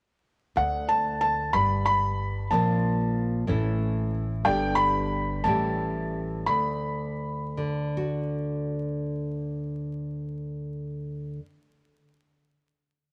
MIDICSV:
0, 0, Header, 1, 4, 480
1, 0, Start_track
1, 0, Tempo, 650054
1, 416, Time_signature, 6, 3, 24, 8
1, 3776, Tempo, 680272
1, 4736, Tempo, 726392
1, 5216, Tempo, 770218
1, 5696, Tempo, 828729
1, 6176, Tempo, 862069
1, 8584, End_track
2, 0, Start_track
2, 0, Title_t, "Felt piano"
2, 0, Program_c, 0, 0
2, 421, Note_on_c, 0, 78, 74
2, 642, Note_off_c, 0, 78, 0
2, 655, Note_on_c, 0, 81, 78
2, 882, Note_off_c, 0, 81, 0
2, 893, Note_on_c, 0, 81, 81
2, 1118, Note_off_c, 0, 81, 0
2, 1130, Note_on_c, 0, 83, 91
2, 1356, Note_off_c, 0, 83, 0
2, 1369, Note_on_c, 0, 83, 96
2, 1823, Note_off_c, 0, 83, 0
2, 1850, Note_on_c, 0, 81, 65
2, 3022, Note_off_c, 0, 81, 0
2, 3284, Note_on_c, 0, 79, 77
2, 3509, Note_on_c, 0, 83, 104
2, 3512, Note_off_c, 0, 79, 0
2, 4005, Note_on_c, 0, 81, 74
2, 4014, Note_off_c, 0, 83, 0
2, 4706, Note_off_c, 0, 81, 0
2, 4729, Note_on_c, 0, 83, 75
2, 5669, Note_off_c, 0, 83, 0
2, 8584, End_track
3, 0, Start_track
3, 0, Title_t, "Nylon-string guitar"
3, 0, Program_c, 1, 24
3, 411, Note_on_c, 1, 38, 61
3, 1132, Note_off_c, 1, 38, 0
3, 1135, Note_on_c, 1, 43, 67
3, 1827, Note_off_c, 1, 43, 0
3, 1853, Note_on_c, 1, 46, 60
3, 1857, Note_on_c, 1, 53, 51
3, 1865, Note_on_c, 1, 58, 54
3, 1869, Note_on_c, 1, 60, 50
3, 1875, Note_on_c, 1, 65, 61
3, 2545, Note_off_c, 1, 46, 0
3, 2546, Note_off_c, 1, 53, 0
3, 2551, Note_off_c, 1, 58, 0
3, 2553, Note_off_c, 1, 60, 0
3, 2556, Note_off_c, 1, 65, 0
3, 2564, Note_on_c, 1, 45, 58
3, 2567, Note_on_c, 1, 52, 50
3, 2572, Note_on_c, 1, 57, 48
3, 2572, Note_on_c, 1, 61, 52
3, 2580, Note_on_c, 1, 64, 63
3, 3262, Note_off_c, 1, 52, 0
3, 3262, Note_off_c, 1, 57, 0
3, 3264, Note_off_c, 1, 61, 0
3, 3268, Note_off_c, 1, 64, 0
3, 3283, Note_on_c, 1, 43, 59
3, 3288, Note_on_c, 1, 50, 54
3, 3289, Note_off_c, 1, 45, 0
3, 3296, Note_on_c, 1, 59, 56
3, 3298, Note_on_c, 1, 62, 55
3, 3302, Note_on_c, 1, 67, 60
3, 3979, Note_off_c, 1, 43, 0
3, 3985, Note_off_c, 1, 59, 0
3, 3985, Note_off_c, 1, 62, 0
3, 3986, Note_off_c, 1, 67, 0
3, 4008, Note_off_c, 1, 50, 0
3, 4008, Note_on_c, 1, 45, 69
3, 4013, Note_on_c, 1, 52, 52
3, 4020, Note_on_c, 1, 55, 54
3, 4023, Note_on_c, 1, 61, 56
3, 4029, Note_on_c, 1, 67, 60
3, 4707, Note_off_c, 1, 52, 0
3, 4714, Note_off_c, 1, 61, 0
3, 4716, Note_off_c, 1, 67, 0
3, 4736, Note_off_c, 1, 45, 0
3, 4740, Note_on_c, 1, 38, 65
3, 4742, Note_off_c, 1, 55, 0
3, 5448, Note_on_c, 1, 50, 54
3, 5695, Note_on_c, 1, 66, 54
3, 6146, Note_off_c, 1, 66, 0
3, 7615, Note_off_c, 1, 50, 0
3, 7618, Note_off_c, 1, 38, 0
3, 8584, End_track
4, 0, Start_track
4, 0, Title_t, "Upright bass"
4, 0, Program_c, 2, 32
4, 419, Note_on_c, 2, 38, 77
4, 1123, Note_off_c, 2, 38, 0
4, 1135, Note_on_c, 2, 31, 65
4, 1841, Note_off_c, 2, 31, 0
4, 1859, Note_on_c, 2, 34, 68
4, 2562, Note_off_c, 2, 34, 0
4, 2580, Note_on_c, 2, 33, 68
4, 3282, Note_off_c, 2, 33, 0
4, 3301, Note_on_c, 2, 31, 75
4, 4001, Note_off_c, 2, 31, 0
4, 4013, Note_on_c, 2, 33, 72
4, 4724, Note_off_c, 2, 33, 0
4, 8584, End_track
0, 0, End_of_file